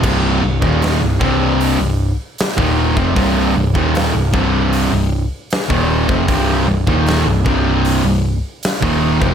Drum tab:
CC |x---------------|----------------|----------------|
HH |----o---o---o---|o---o---o---o---|o---o---o---o---|
SD |----o-------o---|----o-------o---|----o-------o---|
BD |o--o--o------o-o|o--o--o------o-o|o--o--o------o-o|